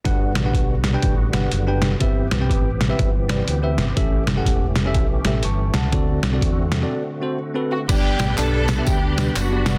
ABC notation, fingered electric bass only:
X:1
M:4/4
L:1/8
Q:"Swing" 1/4=122
K:G
V:1 name="Fingered electric bass" clef=bass
G,,, A,,, B,,,2 A,,, G,,, F,,,2 | G,,, B,,, A,,,2 G,,,2 D,, G,,, | A,,, F,,, E,,,2 B,,, A,,, G,,, ^C,, | D,, C,, E,,2 z4 |
G,,, A,,, B,,,2 D,,2 F,,,2 |]